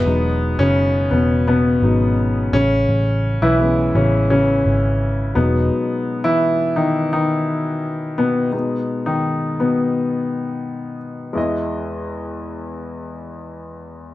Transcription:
<<
  \new Staff \with { instrumentName = "Grand piano" } { \clef bass \time 4/4 \key e \major \tempo 4 = 85 << { <b, b>8. <cis cis'>8. <b, b>8 <b, b>4. <cis cis'>8~ | <cis cis'>8. <e e'>8. <cis cis'>8 <cis cis'>4. <b, b>8~ | <b, b>8. <e e'>8. <dis dis'>8 <dis dis'>4. <b, b>8~ | <b, b>8. <dis dis'>8. <b, b>2 r8 |
<gis e' dis''>1 | } \\ { <fis gis dis'>8 r2 <fis gis dis'>8 r4 | r4 <gis b cis'>4. r4 <fis gis dis'>8~ | <fis gis dis'>2.~ <fis gis dis'>8 r8 | <gis b dis'>1 |
e,1 | } >> }
  \new Staff \with { instrumentName = "Picked electric bass" } { \clef bass \time 4/4 \key e \major e,,8. fis,,8. e,,4 gis,,4 a,,8 | a,,8. b,,8. a,,4 gis,,4 e,,8 | r1 | r1 |
r1 | }
>>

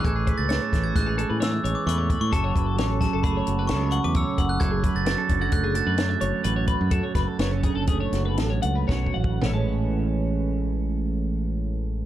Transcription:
<<
  \new Staff \with { instrumentName = "Glockenspiel" } { \time 5/4 \key a \major \tempo 4 = 131 gis'''8. a'''16 a'''8. gis'''16 fis'''4 e'''8. d'''16 cis'''8. cis'''16 | a''4. a''8 b''4 cis'''8 cis'''16 d'''16 e'''8. fis'''16 | gis'''8. a'''16 a'''8. gis'''16 fis'''8 a'''2~ a'''8~ | a'''1 r4 |
r1 r4 | }
  \new Staff \with { instrumentName = "Clean electric guitar" } { \time 5/4 \key a \major a'16 gis'16 b'8 cis''16 a'8 fis'8 gis'16 a'16 b'16 cis''16 e''16 cis''8 b'16 cis''16 b'8 | a'16 cis''16 b'16 a'16 cis''16 a'16 gis'16 a'16 gis'16 cis''8 b'16 a'16 cis''16 fis''16 b'16 cis''8 fis''8 | a'16 gis'16 b'8 cis''16 a'8 fis'8 gis'16 a'16 b'16 cis''16 e''16 cis''8 b'16 cis''16 b'8 | a'16 cis''16 b'16 a'16 cis''16 a'16 gis'16 a'16 gis'16 cis''8 b'16 a'16 cis''16 fis''16 b'16 cis''8 fis''8 |
<cis'' e'' a''>1~ <cis'' e'' a''>4 | }
  \new Staff \with { instrumentName = "Clean electric guitar" } { \time 5/4 \key a \major << { gis'4 b16 cis'8. gis8 gis'8 gis4 gis'4 | fis'4 cis'4 a8 fis'8 a4 fis'4 | e'16 fis'8. b16 cis'8. a8 fis'8 a4 fis'4 | fis'4 b16 cis'8. a8 fis'8 a4 fis'4 |
<e gis cis'>1~ <e gis cis'>4 | } \\ { a,4. e4. e,4 a,4 | fis,4. fis4. cis4 fis,4 | fis,4. d4. fis,4 fis,4 | fis,4. d4. fis,4 fis,4 |
a,1~ a,4 | } >> }
  \new Staff \with { instrumentName = "Fingered electric bass" } { \clef bass \time 5/4 \key a \major a,,8. cis,8 r16 a,,8 a,,8. a,8. a,,16 r16 e,8. a,16 | fis,,8 fis,,8 a,,8. fis,,8. fis,,8 cis,8. e,8 r16 fis,,8 | fis,,8. fis,,8 r16 fis,,8 fis,,8. fis,8. fis,,16 r16 a,,8. fis,16~ | fis,16 r16 fis,,16 r16 fis,,8. fis,,8. fis,,8 a,,8 cis,8 b,,8 a,,8 |
a,,1~ a,,4 | }
  \new DrumStaff \with { instrumentName = "Drums" } \drummode { \time 5/4 <hh bd>8 <hh bd>8 <hh sn>8 <hh bd sn>8 <hh bd sn>8 hh8 <hh sn>8 hh8 hh8 <hh bd>8 | <hh bd>8 <hh bd>8 <hh sn>8 <hh bd sn>8 <hh bd>8 hh8 <hh sn>8 hh8 <hh bd>8 <hh bd>8 | <hh bd>8 <hh bd>8 <hh sn>8 <hh bd>8 <hh bd>8 hh8 <hh sn>8 hh8 hh8 <hh bd>8 | <hh bd>8 <hh bd sn>8 <hh sn>8 <hh bd>8 <hh bd>8 <hh sn>8 <hh sn>8 hh8 \tuplet 3/2 { <bd sn>8 bd8 bd8 } |
<sn tomfh>4 r4 r4 r4 r4 | }
>>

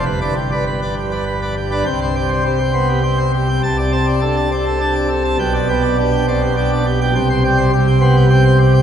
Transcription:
<<
  \new Staff \with { instrumentName = "Pipe organ" } { \time 3/4 \key g \mixolydian \tempo 4 = 102 << { b'16 <b' d''>16 g'16 <b' d''>16 b'16 <b' d''>16 g'16 <b' d''>16 b'16 <b' d''>16 g'16 <b' d''>16 | g''16 c''16 g''16 c''16 g'16 g''16 c''16 g'16 g''16 c''16 g'16 g''16 | a''16 d''16 a''16 d''16 a'16 a''16 d''16 a'16 a''16 d''16 a'16 a''16 | g''16 d''16 g''16 d''16 g'16 g''16 d''16 g'16 g''16 d''16 g'16 g''16 |
g''16 c''16 g''16 c''16 g'16 g''16 c''16 g'16 g''16 c''16 g'16 g''16 | } \\ { g,16 d'16 r2 r16 d'16 | c8 g8 c'8 b8 c'8 r8 | c8 c'8 d'8 c'8 d'8 r8 | b,8 b8 d'8 c'8 d'8 r8 |
c8 g8 c'8 b8 c'8 r8 | } >> }
  \new Staff \with { instrumentName = "Pipe organ" } { \clef bass \time 3/4 \key g \mixolydian g,,2. | c,2. | c,2. | b,,2. |
c,2. | }
>>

